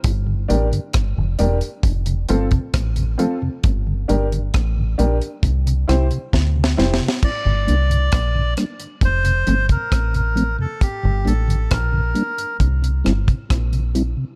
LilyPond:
<<
  \new Staff \with { instrumentName = "Melodica" } { \time 4/4 \key g \dorian \tempo 4 = 67 r1 | r1 | d''4. r8 c''8. bes'8 bes'8 a'16 | g'8 a'8 bes'4 r2 | }
  \new Staff \with { instrumentName = "Upright piano" } { \time 4/4 \key g \dorian r8 <d' g' bes'>8 r8 <d' g' bes'>8 r8 <c' f' a'>8 r8 <c' f' a'>8 | r8 <d' g' bes'>8 r8 <d' g' bes'>8 r8 <e' g' c''>8 r8 <e' g' c''>8 | r1 | r1 | }
  \new Staff \with { instrumentName = "Tonewheel organ" } { \clef bass \time 4/4 \key g \dorian << { r8 <g bes d'>8 r8 <g bes d'>8 r8 <f a c'>8 r8 <f a c'>8 | r8 <g bes d'>8 r8 <g bes d'>8 r8 <g c' e'>8 r8 <g c' e'>8 | r8 <g bes d'>8 r8 <g bes d'>8 r8 <f a c'>8 r8 <f a c'>8 | r8 <g bes d'>8 r8 <g bes d'>8 r8 <g c' e'>8 r8 <g c' e'>8 | } \\ { r16 <g, d>16 r16 <g, d>16 r16 <g, d>16 r8. <f, c>16 r16 <f, c>16 r16 <f, c>16 r16 <f, c>16 | r16 <g, d>16 r16 <g, d>16 r16 <g, d>16 r8. c16 r16 c16 r16 c16 r16 c16 | r16 <g, d>16 r16 <g, d>16 r16 <g, d>16 r8. <f, c>16 r16 <f, c>16 r16 <f, c>16 r16 <f, c>16 | r16 <g, d>16 r16 <g, d>16 r16 <g, d>16 r8. c16 r16 c16 r16 c16 r16 c16 | } >> }
  \new Staff \with { instrumentName = "Fingered electric bass" } { \clef bass \time 4/4 \key g \dorian g,,8 a,,16 r16 g,,16 f,,16 e,,16 r16 f,,8 g,,16 r16 a,,8 r8 | g,,8 g,,8 a,,8 bes,,16 r16 c,8 c,16 r16 d,8 f,,16 r16 | r16 g,,16 c,8 bes,,8 r8 f,,8 g,,16 r16 a,,8. r16 | r16 g,,16 a,,8 bes,,8 r8 c,8 g,,16 r16 bes,,8. r16 | }
  \new DrumStaff \with { instrumentName = "Drums" } \drummode { \time 4/4 <hh bd>8 hh16 hh16 <hh bd ss>8 hh16 hh16 <hh bd>16 hh16 hh16 <hh bd>16 <hh bd ss>16 hh16 hh8 | <hh bd>8 hh16 hh16 <hh bd ss>8 hh16 hh16 <hh bd>16 hh16 <hh ss>16 hh16 \tuplet 3/2 { <bd sn>16 r16 sn16 sn16 sn16 sn16 } | <cymc bd>8 hh16 hh16 <hh bd ss>8 <hh ss>16 hh16 <hh bd>16 hh16 hh16 <hh bd>16 <hh bd ss>16 hh16 hh8 | <hh bd>8 hh16 hh16 <hh bd ss>8 hh16 hh16 <hh bd>16 hh16 <hh ss>16 <hh bd>16 <hh bd ss>16 hh16 hh8 | }
>>